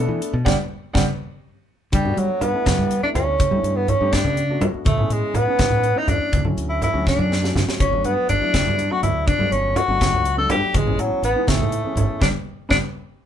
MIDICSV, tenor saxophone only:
0, 0, Header, 1, 2, 480
1, 0, Start_track
1, 0, Tempo, 489796
1, 450, Time_signature, 6, 3, 24, 8
1, 12992, End_track
2, 0, Start_track
2, 0, Title_t, "Tenor saxophone"
2, 0, Program_c, 0, 66
2, 1896, Note_on_c, 0, 55, 71
2, 2138, Note_on_c, 0, 54, 71
2, 2152, Note_off_c, 0, 55, 0
2, 2368, Note_on_c, 0, 59, 85
2, 2382, Note_off_c, 0, 54, 0
2, 2964, Note_off_c, 0, 59, 0
2, 2969, Note_on_c, 0, 62, 77
2, 3022, Note_off_c, 0, 62, 0
2, 3092, Note_on_c, 0, 61, 87
2, 3685, Note_on_c, 0, 59, 75
2, 3700, Note_off_c, 0, 61, 0
2, 3808, Note_on_c, 0, 61, 88
2, 3823, Note_off_c, 0, 59, 0
2, 4041, Note_on_c, 0, 62, 83
2, 4056, Note_off_c, 0, 61, 0
2, 4583, Note_off_c, 0, 62, 0
2, 4756, Note_on_c, 0, 57, 87
2, 5018, Note_on_c, 0, 56, 86
2, 5033, Note_off_c, 0, 57, 0
2, 5251, Note_on_c, 0, 59, 104
2, 5266, Note_off_c, 0, 56, 0
2, 5856, Note_on_c, 0, 63, 90
2, 5871, Note_off_c, 0, 59, 0
2, 5964, Note_on_c, 0, 62, 80
2, 5979, Note_off_c, 0, 63, 0
2, 6303, Note_off_c, 0, 62, 0
2, 6559, Note_on_c, 0, 64, 68
2, 6674, Note_off_c, 0, 64, 0
2, 6694, Note_on_c, 0, 64, 80
2, 6914, Note_off_c, 0, 64, 0
2, 6938, Note_on_c, 0, 62, 72
2, 7435, Note_off_c, 0, 62, 0
2, 7643, Note_on_c, 0, 61, 79
2, 7889, Note_on_c, 0, 59, 82
2, 7904, Note_off_c, 0, 61, 0
2, 8119, Note_off_c, 0, 59, 0
2, 8125, Note_on_c, 0, 62, 91
2, 8736, Note_on_c, 0, 66, 88
2, 8751, Note_off_c, 0, 62, 0
2, 8841, Note_off_c, 0, 66, 0
2, 8847, Note_on_c, 0, 64, 82
2, 9085, Note_on_c, 0, 62, 92
2, 9099, Note_off_c, 0, 64, 0
2, 9326, Note_on_c, 0, 61, 87
2, 9341, Note_off_c, 0, 62, 0
2, 9568, Note_on_c, 0, 66, 103
2, 9583, Note_off_c, 0, 61, 0
2, 10166, Note_off_c, 0, 66, 0
2, 10172, Note_on_c, 0, 69, 94
2, 10283, Note_off_c, 0, 69, 0
2, 10298, Note_on_c, 0, 67, 86
2, 10543, Note_on_c, 0, 56, 81
2, 10557, Note_off_c, 0, 67, 0
2, 10782, Note_on_c, 0, 54, 80
2, 10797, Note_off_c, 0, 56, 0
2, 11013, Note_off_c, 0, 54, 0
2, 11019, Note_on_c, 0, 59, 88
2, 11256, Note_on_c, 0, 57, 78
2, 11270, Note_off_c, 0, 59, 0
2, 11968, Note_off_c, 0, 57, 0
2, 11974, Note_on_c, 0, 62, 81
2, 12033, Note_off_c, 0, 62, 0
2, 12452, Note_on_c, 0, 62, 91
2, 12511, Note_off_c, 0, 62, 0
2, 12992, End_track
0, 0, End_of_file